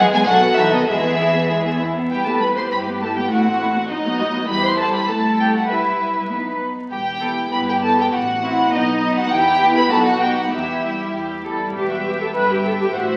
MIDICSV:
0, 0, Header, 1, 6, 480
1, 0, Start_track
1, 0, Key_signature, 1, "minor"
1, 0, Tempo, 603015
1, 702, Time_signature, 2, 2, 24, 8
1, 10482, End_track
2, 0, Start_track
2, 0, Title_t, "Violin section"
2, 0, Program_c, 0, 48
2, 109, Note_on_c, 0, 80, 125
2, 155, Note_off_c, 0, 80, 0
2, 211, Note_on_c, 0, 78, 116
2, 450, Note_off_c, 0, 78, 0
2, 451, Note_on_c, 0, 76, 103
2, 576, Note_off_c, 0, 76, 0
2, 587, Note_on_c, 0, 75, 97
2, 700, Note_on_c, 0, 76, 93
2, 706, Note_off_c, 0, 75, 0
2, 1419, Note_off_c, 0, 76, 0
2, 1671, Note_on_c, 0, 79, 69
2, 1785, Note_off_c, 0, 79, 0
2, 1804, Note_on_c, 0, 81, 60
2, 1912, Note_on_c, 0, 83, 67
2, 1920, Note_off_c, 0, 81, 0
2, 1960, Note_off_c, 0, 83, 0
2, 2046, Note_on_c, 0, 84, 66
2, 2092, Note_off_c, 0, 84, 0
2, 2160, Note_on_c, 0, 83, 69
2, 2224, Note_off_c, 0, 83, 0
2, 2405, Note_on_c, 0, 81, 61
2, 2516, Note_off_c, 0, 81, 0
2, 2521, Note_on_c, 0, 79, 72
2, 2633, Note_off_c, 0, 79, 0
2, 2636, Note_on_c, 0, 78, 75
2, 3093, Note_off_c, 0, 78, 0
2, 3105, Note_on_c, 0, 75, 82
2, 3562, Note_off_c, 0, 75, 0
2, 3568, Note_on_c, 0, 83, 99
2, 3684, Note_off_c, 0, 83, 0
2, 3705, Note_on_c, 0, 84, 87
2, 3812, Note_on_c, 0, 81, 82
2, 3815, Note_off_c, 0, 84, 0
2, 3926, Note_off_c, 0, 81, 0
2, 3939, Note_on_c, 0, 83, 74
2, 4048, Note_on_c, 0, 81, 75
2, 4049, Note_off_c, 0, 83, 0
2, 4287, Note_off_c, 0, 81, 0
2, 4297, Note_on_c, 0, 79, 61
2, 4343, Note_off_c, 0, 79, 0
2, 4429, Note_on_c, 0, 78, 65
2, 4537, Note_off_c, 0, 78, 0
2, 4538, Note_on_c, 0, 76, 54
2, 5020, Note_off_c, 0, 76, 0
2, 5505, Note_on_c, 0, 79, 74
2, 5956, Note_off_c, 0, 79, 0
2, 5989, Note_on_c, 0, 83, 76
2, 6037, Note_off_c, 0, 83, 0
2, 6121, Note_on_c, 0, 79, 68
2, 6166, Note_off_c, 0, 79, 0
2, 6235, Note_on_c, 0, 81, 77
2, 6348, Note_off_c, 0, 81, 0
2, 6365, Note_on_c, 0, 79, 82
2, 6408, Note_off_c, 0, 79, 0
2, 6479, Note_on_c, 0, 78, 84
2, 6937, Note_off_c, 0, 78, 0
2, 6946, Note_on_c, 0, 75, 80
2, 7296, Note_off_c, 0, 75, 0
2, 7301, Note_on_c, 0, 78, 89
2, 7412, Note_off_c, 0, 78, 0
2, 7415, Note_on_c, 0, 79, 104
2, 7768, Note_off_c, 0, 79, 0
2, 7772, Note_on_c, 0, 83, 92
2, 7886, Note_off_c, 0, 83, 0
2, 7889, Note_on_c, 0, 81, 91
2, 8007, Note_off_c, 0, 81, 0
2, 8008, Note_on_c, 0, 78, 76
2, 8119, Note_on_c, 0, 79, 74
2, 8124, Note_off_c, 0, 78, 0
2, 8241, Note_off_c, 0, 79, 0
2, 8256, Note_on_c, 0, 78, 70
2, 8368, Note_on_c, 0, 76, 58
2, 8371, Note_off_c, 0, 78, 0
2, 8852, Note_off_c, 0, 76, 0
2, 9350, Note_on_c, 0, 79, 43
2, 9800, Note_off_c, 0, 79, 0
2, 9824, Note_on_c, 0, 79, 52
2, 10294, Note_off_c, 0, 79, 0
2, 10310, Note_on_c, 0, 78, 56
2, 10482, Note_off_c, 0, 78, 0
2, 10482, End_track
3, 0, Start_track
3, 0, Title_t, "Violin section"
3, 0, Program_c, 1, 48
3, 0, Note_on_c, 1, 56, 92
3, 0, Note_on_c, 1, 68, 89
3, 101, Note_off_c, 1, 56, 0
3, 101, Note_on_c, 1, 59, 81
3, 214, Note_off_c, 1, 68, 0
3, 216, Note_on_c, 1, 69, 86
3, 217, Note_on_c, 1, 57, 84
3, 219, Note_off_c, 1, 59, 0
3, 329, Note_off_c, 1, 57, 0
3, 335, Note_on_c, 1, 59, 77
3, 451, Note_on_c, 1, 63, 84
3, 457, Note_off_c, 1, 59, 0
3, 576, Note_off_c, 1, 63, 0
3, 576, Note_on_c, 1, 59, 71
3, 695, Note_on_c, 1, 56, 81
3, 696, Note_on_c, 1, 68, 74
3, 700, Note_off_c, 1, 59, 0
3, 701, Note_off_c, 1, 69, 0
3, 813, Note_off_c, 1, 56, 0
3, 817, Note_on_c, 1, 59, 87
3, 940, Note_on_c, 1, 64, 73
3, 943, Note_off_c, 1, 59, 0
3, 1064, Note_on_c, 1, 59, 66
3, 1066, Note_off_c, 1, 64, 0
3, 1189, Note_off_c, 1, 59, 0
3, 1192, Note_on_c, 1, 56, 67
3, 1313, Note_off_c, 1, 56, 0
3, 1319, Note_on_c, 1, 59, 73
3, 1437, Note_off_c, 1, 59, 0
3, 1442, Note_on_c, 1, 64, 70
3, 1513, Note_off_c, 1, 68, 0
3, 1560, Note_off_c, 1, 64, 0
3, 1561, Note_on_c, 1, 59, 64
3, 1676, Note_on_c, 1, 67, 62
3, 1679, Note_off_c, 1, 59, 0
3, 1788, Note_off_c, 1, 67, 0
3, 1803, Note_on_c, 1, 69, 66
3, 1917, Note_off_c, 1, 69, 0
3, 1926, Note_on_c, 1, 71, 61
3, 2041, Note_off_c, 1, 71, 0
3, 2044, Note_on_c, 1, 72, 59
3, 2159, Note_off_c, 1, 72, 0
3, 2161, Note_on_c, 1, 71, 55
3, 2392, Note_off_c, 1, 71, 0
3, 2403, Note_on_c, 1, 69, 63
3, 2518, Note_off_c, 1, 69, 0
3, 2518, Note_on_c, 1, 67, 57
3, 2564, Note_off_c, 1, 67, 0
3, 2636, Note_on_c, 1, 66, 80
3, 3093, Note_off_c, 1, 66, 0
3, 3103, Note_on_c, 1, 63, 67
3, 3560, Note_off_c, 1, 63, 0
3, 3569, Note_on_c, 1, 71, 88
3, 3684, Note_off_c, 1, 71, 0
3, 3687, Note_on_c, 1, 72, 81
3, 3798, Note_on_c, 1, 69, 71
3, 3805, Note_off_c, 1, 72, 0
3, 3921, Note_off_c, 1, 69, 0
3, 3924, Note_on_c, 1, 71, 69
3, 4041, Note_on_c, 1, 69, 55
3, 4042, Note_off_c, 1, 71, 0
3, 4105, Note_off_c, 1, 69, 0
3, 4286, Note_on_c, 1, 67, 62
3, 4405, Note_off_c, 1, 67, 0
3, 4405, Note_on_c, 1, 66, 54
3, 4528, Note_off_c, 1, 66, 0
3, 4531, Note_on_c, 1, 64, 53
3, 5007, Note_off_c, 1, 64, 0
3, 5505, Note_on_c, 1, 67, 68
3, 5956, Note_off_c, 1, 67, 0
3, 5991, Note_on_c, 1, 71, 62
3, 6109, Note_off_c, 1, 71, 0
3, 6113, Note_on_c, 1, 67, 59
3, 6229, Note_off_c, 1, 67, 0
3, 6238, Note_on_c, 1, 69, 71
3, 6349, Note_off_c, 1, 69, 0
3, 6349, Note_on_c, 1, 67, 60
3, 6466, Note_off_c, 1, 67, 0
3, 6475, Note_on_c, 1, 66, 78
3, 6942, Note_on_c, 1, 63, 68
3, 6945, Note_off_c, 1, 66, 0
3, 7287, Note_off_c, 1, 63, 0
3, 7299, Note_on_c, 1, 66, 72
3, 7345, Note_off_c, 1, 66, 0
3, 7411, Note_on_c, 1, 67, 97
3, 7760, Note_off_c, 1, 67, 0
3, 7768, Note_on_c, 1, 71, 79
3, 7886, Note_off_c, 1, 71, 0
3, 7892, Note_on_c, 1, 69, 75
3, 8002, Note_on_c, 1, 66, 65
3, 8008, Note_off_c, 1, 69, 0
3, 8123, Note_off_c, 1, 66, 0
3, 8128, Note_on_c, 1, 67, 70
3, 8245, Note_on_c, 1, 66, 52
3, 8248, Note_off_c, 1, 67, 0
3, 8294, Note_off_c, 1, 66, 0
3, 8370, Note_on_c, 1, 64, 61
3, 8853, Note_off_c, 1, 64, 0
3, 9356, Note_on_c, 1, 71, 52
3, 9357, Note_on_c, 1, 76, 55
3, 9803, Note_off_c, 1, 71, 0
3, 9803, Note_off_c, 1, 76, 0
3, 9833, Note_on_c, 1, 76, 52
3, 9834, Note_on_c, 1, 71, 53
3, 10297, Note_off_c, 1, 76, 0
3, 10299, Note_off_c, 1, 71, 0
3, 10304, Note_on_c, 1, 72, 61
3, 10306, Note_on_c, 1, 76, 65
3, 10482, Note_off_c, 1, 72, 0
3, 10482, Note_off_c, 1, 76, 0
3, 10482, End_track
4, 0, Start_track
4, 0, Title_t, "Cello section"
4, 0, Program_c, 2, 48
4, 95, Note_on_c, 2, 56, 93
4, 214, Note_off_c, 2, 56, 0
4, 214, Note_on_c, 2, 54, 108
4, 278, Note_off_c, 2, 54, 0
4, 453, Note_on_c, 2, 52, 86
4, 575, Note_off_c, 2, 52, 0
4, 577, Note_on_c, 2, 51, 81
4, 627, Note_off_c, 2, 51, 0
4, 692, Note_on_c, 2, 52, 82
4, 1415, Note_off_c, 2, 52, 0
4, 1675, Note_on_c, 2, 71, 50
4, 2123, Note_off_c, 2, 71, 0
4, 2157, Note_on_c, 2, 67, 58
4, 2623, Note_off_c, 2, 67, 0
4, 2627, Note_on_c, 2, 66, 55
4, 2860, Note_off_c, 2, 66, 0
4, 2865, Note_on_c, 2, 64, 54
4, 2929, Note_off_c, 2, 64, 0
4, 3098, Note_on_c, 2, 63, 68
4, 3162, Note_off_c, 2, 63, 0
4, 3328, Note_on_c, 2, 66, 62
4, 3392, Note_off_c, 2, 66, 0
4, 3569, Note_on_c, 2, 67, 68
4, 4035, Note_off_c, 2, 67, 0
4, 4040, Note_on_c, 2, 69, 63
4, 4517, Note_off_c, 2, 69, 0
4, 4529, Note_on_c, 2, 71, 51
4, 5245, Note_off_c, 2, 71, 0
4, 5499, Note_on_c, 2, 67, 54
4, 5563, Note_off_c, 2, 67, 0
4, 5744, Note_on_c, 2, 69, 52
4, 5808, Note_off_c, 2, 69, 0
4, 5989, Note_on_c, 2, 67, 58
4, 6456, Note_off_c, 2, 67, 0
4, 6464, Note_on_c, 2, 66, 56
4, 6528, Note_off_c, 2, 66, 0
4, 6705, Note_on_c, 2, 64, 60
4, 6936, Note_off_c, 2, 64, 0
4, 6939, Note_on_c, 2, 63, 68
4, 7410, Note_off_c, 2, 63, 0
4, 7411, Note_on_c, 2, 64, 77
4, 7884, Note_on_c, 2, 66, 79
4, 7886, Note_off_c, 2, 64, 0
4, 8368, Note_off_c, 2, 66, 0
4, 8368, Note_on_c, 2, 67, 56
4, 8803, Note_off_c, 2, 67, 0
4, 8865, Note_on_c, 2, 67, 55
4, 9094, Note_off_c, 2, 67, 0
4, 9107, Note_on_c, 2, 69, 59
4, 9351, Note_on_c, 2, 40, 53
4, 9353, Note_off_c, 2, 69, 0
4, 9801, Note_off_c, 2, 40, 0
4, 9828, Note_on_c, 2, 43, 59
4, 10305, Note_off_c, 2, 43, 0
4, 10307, Note_on_c, 2, 45, 60
4, 10482, Note_off_c, 2, 45, 0
4, 10482, End_track
5, 0, Start_track
5, 0, Title_t, "Viola section"
5, 0, Program_c, 3, 48
5, 0, Note_on_c, 3, 68, 103
5, 210, Note_off_c, 3, 68, 0
5, 217, Note_on_c, 3, 66, 95
5, 692, Note_off_c, 3, 66, 0
5, 703, Note_on_c, 3, 68, 78
5, 1420, Note_off_c, 3, 68, 0
5, 1675, Note_on_c, 3, 64, 40
5, 1676, Note_on_c, 3, 55, 43
5, 1787, Note_off_c, 3, 55, 0
5, 1787, Note_off_c, 3, 64, 0
5, 1795, Note_on_c, 3, 67, 37
5, 1797, Note_on_c, 3, 59, 36
5, 1912, Note_on_c, 3, 64, 42
5, 1915, Note_off_c, 3, 67, 0
5, 1915, Note_on_c, 3, 55, 42
5, 1916, Note_off_c, 3, 59, 0
5, 2034, Note_off_c, 3, 64, 0
5, 2035, Note_off_c, 3, 55, 0
5, 2040, Note_on_c, 3, 59, 43
5, 2040, Note_on_c, 3, 67, 45
5, 2153, Note_on_c, 3, 64, 43
5, 2154, Note_on_c, 3, 55, 43
5, 2158, Note_off_c, 3, 59, 0
5, 2158, Note_off_c, 3, 67, 0
5, 2265, Note_off_c, 3, 64, 0
5, 2266, Note_off_c, 3, 55, 0
5, 2274, Note_on_c, 3, 67, 43
5, 2276, Note_on_c, 3, 59, 43
5, 2394, Note_off_c, 3, 67, 0
5, 2394, Note_on_c, 3, 55, 52
5, 2395, Note_off_c, 3, 59, 0
5, 2395, Note_on_c, 3, 64, 48
5, 2512, Note_on_c, 3, 67, 50
5, 2513, Note_off_c, 3, 55, 0
5, 2513, Note_on_c, 3, 59, 50
5, 2514, Note_off_c, 3, 64, 0
5, 2629, Note_on_c, 3, 64, 55
5, 2630, Note_on_c, 3, 57, 58
5, 2631, Note_off_c, 3, 59, 0
5, 2631, Note_off_c, 3, 67, 0
5, 2740, Note_off_c, 3, 57, 0
5, 2740, Note_off_c, 3, 64, 0
5, 2751, Note_on_c, 3, 60, 49
5, 2752, Note_on_c, 3, 66, 49
5, 2867, Note_off_c, 3, 60, 0
5, 2868, Note_off_c, 3, 66, 0
5, 2869, Note_on_c, 3, 64, 50
5, 2870, Note_on_c, 3, 57, 54
5, 2985, Note_off_c, 3, 57, 0
5, 2985, Note_off_c, 3, 64, 0
5, 2989, Note_on_c, 3, 60, 60
5, 2990, Note_on_c, 3, 66, 56
5, 3103, Note_off_c, 3, 60, 0
5, 3104, Note_off_c, 3, 66, 0
5, 3105, Note_on_c, 3, 54, 54
5, 3106, Note_on_c, 3, 63, 51
5, 3211, Note_off_c, 3, 54, 0
5, 3212, Note_off_c, 3, 63, 0
5, 3219, Note_on_c, 3, 59, 55
5, 3219, Note_on_c, 3, 66, 54
5, 3334, Note_on_c, 3, 63, 59
5, 3335, Note_off_c, 3, 59, 0
5, 3335, Note_off_c, 3, 66, 0
5, 3335, Note_on_c, 3, 54, 56
5, 3451, Note_off_c, 3, 63, 0
5, 3452, Note_off_c, 3, 54, 0
5, 3454, Note_on_c, 3, 59, 56
5, 3455, Note_on_c, 3, 66, 56
5, 3566, Note_on_c, 3, 55, 65
5, 3567, Note_on_c, 3, 64, 65
5, 3570, Note_off_c, 3, 59, 0
5, 3570, Note_off_c, 3, 66, 0
5, 4011, Note_off_c, 3, 55, 0
5, 4012, Note_off_c, 3, 64, 0
5, 4042, Note_on_c, 3, 57, 54
5, 4042, Note_on_c, 3, 64, 58
5, 4517, Note_off_c, 3, 64, 0
5, 4527, Note_off_c, 3, 57, 0
5, 4531, Note_on_c, 3, 55, 45
5, 4532, Note_on_c, 3, 64, 41
5, 5007, Note_off_c, 3, 55, 0
5, 5007, Note_off_c, 3, 64, 0
5, 5017, Note_on_c, 3, 59, 41
5, 5017, Note_on_c, 3, 63, 41
5, 5342, Note_off_c, 3, 59, 0
5, 5342, Note_off_c, 3, 63, 0
5, 5746, Note_on_c, 3, 59, 42
5, 5748, Note_on_c, 3, 64, 50
5, 5976, Note_off_c, 3, 64, 0
5, 5978, Note_off_c, 3, 59, 0
5, 5986, Note_on_c, 3, 64, 47
5, 5988, Note_on_c, 3, 59, 48
5, 6212, Note_off_c, 3, 59, 0
5, 6215, Note_off_c, 3, 64, 0
5, 6222, Note_on_c, 3, 59, 55
5, 6225, Note_on_c, 3, 64, 49
5, 6458, Note_off_c, 3, 59, 0
5, 6459, Note_off_c, 3, 64, 0
5, 6700, Note_on_c, 3, 60, 51
5, 6700, Note_on_c, 3, 64, 53
5, 6933, Note_off_c, 3, 60, 0
5, 6933, Note_off_c, 3, 64, 0
5, 6937, Note_on_c, 3, 59, 56
5, 6938, Note_on_c, 3, 63, 51
5, 7162, Note_off_c, 3, 59, 0
5, 7163, Note_off_c, 3, 63, 0
5, 7172, Note_on_c, 3, 59, 67
5, 7173, Note_on_c, 3, 63, 67
5, 7404, Note_off_c, 3, 59, 0
5, 7404, Note_off_c, 3, 63, 0
5, 7648, Note_on_c, 3, 64, 62
5, 7649, Note_on_c, 3, 59, 61
5, 7875, Note_off_c, 3, 59, 0
5, 7881, Note_off_c, 3, 64, 0
5, 7884, Note_on_c, 3, 59, 55
5, 7884, Note_on_c, 3, 63, 49
5, 8115, Note_off_c, 3, 63, 0
5, 8117, Note_off_c, 3, 59, 0
5, 8124, Note_on_c, 3, 63, 49
5, 8126, Note_on_c, 3, 59, 56
5, 8363, Note_off_c, 3, 63, 0
5, 8364, Note_off_c, 3, 59, 0
5, 8612, Note_on_c, 3, 55, 46
5, 8612, Note_on_c, 3, 64, 45
5, 9098, Note_off_c, 3, 55, 0
5, 9098, Note_off_c, 3, 64, 0
5, 9108, Note_on_c, 3, 55, 52
5, 9108, Note_on_c, 3, 64, 49
5, 9345, Note_on_c, 3, 67, 76
5, 9348, Note_off_c, 3, 64, 0
5, 9349, Note_off_c, 3, 55, 0
5, 9461, Note_off_c, 3, 67, 0
5, 9471, Note_on_c, 3, 66, 61
5, 9520, Note_off_c, 3, 66, 0
5, 9584, Note_on_c, 3, 67, 70
5, 9707, Note_off_c, 3, 67, 0
5, 9714, Note_on_c, 3, 69, 71
5, 9762, Note_off_c, 3, 69, 0
5, 9828, Note_on_c, 3, 71, 76
5, 9948, Note_off_c, 3, 71, 0
5, 9957, Note_on_c, 3, 67, 66
5, 10003, Note_off_c, 3, 67, 0
5, 10069, Note_on_c, 3, 69, 80
5, 10117, Note_off_c, 3, 69, 0
5, 10192, Note_on_c, 3, 67, 70
5, 10303, Note_on_c, 3, 66, 75
5, 10307, Note_off_c, 3, 67, 0
5, 10482, Note_off_c, 3, 66, 0
5, 10482, End_track
6, 0, Start_track
6, 0, Title_t, "Double bass section"
6, 0, Program_c, 4, 48
6, 0, Note_on_c, 4, 40, 94
6, 215, Note_on_c, 4, 35, 100
6, 218, Note_off_c, 4, 40, 0
6, 698, Note_on_c, 4, 40, 82
6, 701, Note_off_c, 4, 35, 0
6, 1497, Note_off_c, 4, 40, 0
6, 1677, Note_on_c, 4, 40, 46
6, 2124, Note_off_c, 4, 40, 0
6, 2157, Note_on_c, 4, 31, 53
6, 2632, Note_off_c, 4, 31, 0
6, 2633, Note_on_c, 4, 33, 61
6, 3101, Note_off_c, 4, 33, 0
6, 3104, Note_on_c, 4, 35, 72
6, 3568, Note_on_c, 4, 40, 64
6, 3570, Note_off_c, 4, 35, 0
6, 4012, Note_off_c, 4, 40, 0
6, 4048, Note_on_c, 4, 36, 57
6, 4527, Note_on_c, 4, 35, 45
6, 4530, Note_off_c, 4, 36, 0
6, 5341, Note_off_c, 4, 35, 0
6, 5507, Note_on_c, 4, 28, 52
6, 5932, Note_off_c, 4, 28, 0
6, 5986, Note_on_c, 4, 31, 64
6, 6408, Note_off_c, 4, 31, 0
6, 6470, Note_on_c, 4, 33, 66
6, 6886, Note_off_c, 4, 33, 0
6, 6942, Note_on_c, 4, 35, 77
6, 7356, Note_off_c, 4, 35, 0
6, 7412, Note_on_c, 4, 40, 75
6, 7830, Note_off_c, 4, 40, 0
6, 7888, Note_on_c, 4, 35, 78
6, 8312, Note_off_c, 4, 35, 0
6, 8368, Note_on_c, 4, 40, 59
6, 8803, Note_off_c, 4, 40, 0
6, 8861, Note_on_c, 4, 40, 55
6, 9296, Note_off_c, 4, 40, 0
6, 9353, Note_on_c, 4, 28, 52
6, 9801, Note_off_c, 4, 28, 0
6, 9832, Note_on_c, 4, 31, 61
6, 10306, Note_on_c, 4, 33, 59
6, 10307, Note_off_c, 4, 31, 0
6, 10482, Note_off_c, 4, 33, 0
6, 10482, End_track
0, 0, End_of_file